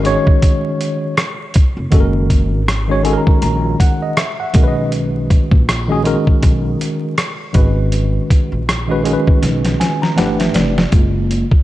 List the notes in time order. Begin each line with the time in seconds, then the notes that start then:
Already playing: G#1
0.03 D#3 G#3 C#4 F#4 C#5, closed hi-hat
0.27 kick
0.42 kick, closed hi-hat
0.81 closed hi-hat
1.17 cross-stick, closed hi-hat
1.54 kick, closed hi-hat
1.77 F1
1.90 F#1 D#3 G#3 C#4 F#4 A4, kick, closed hi-hat
2.00 A#4
2.30 kick, closed hi-hat
2.52 G#1
2.68 cross-stick, closed hi-hat
2.88 D#3 G#3 C#4 F#4 C#5
3.03 D#3 G#3 C#4 F#4 A4 G#5, closed hi-hat
3.13 A#4
3.18 A#5
3.27 kick
3.42 A#1 A#5, closed hi-hat
3.80 F#5, kick, closed hi-hat
4.02 D#5
4.17 E5, cross-stick, closed hi-hat
4.40 E5 F#5
4.53 B1 D#3 G#3 C#4 F#4 A#4, kick, closed hi-hat
4.63 B4
4.68 D#5
4.92 closed hi-hat
5.30 kick, closed hi-hat
5.51 A#1, kick
5.69 cross-stick, closed hi-hat
5.88 D#3 G#3 C#4 F#4 G#4
6.03 D#3 G#3 C#4 F#4 A#4, closed hi-hat
6.27 kick
6.42 B1, kick, closed hi-hat
6.81 closed hi-hat
7.18 cross-stick, closed hi-hat
7.53 G#1 D#3 G#3 C#4 F#4 B4, kick, closed hi-hat
7.92 closed hi-hat
8.30 kick, closed hi-hat
8.52 A#1
8.69 cross-stick, closed hi-hat
8.88 D#3 G#3 C#4 F#4 B4
9.03 D#3 G#3 C#4 F#4 A#4, closed hi-hat
9.13 B4
9.27 kick
9.42 B1, snare, closed hi-hat
9.65 snare, closed hi-hat
9.80 G#5, snare, closed hi-hat
10.02 A#5, snare
10.16 G1 E3 A3 D4 G4 B4 F#5, snare, closed hi-hat
10.39 E5, snare, closed hi-hat
10.54 F1 D5, snare, closed hi-hat
10.78 snare
10.92 F#1 G#3 A#3 F4, kick, closed hi-hat
11.31 closed hi-hat
11.52 kick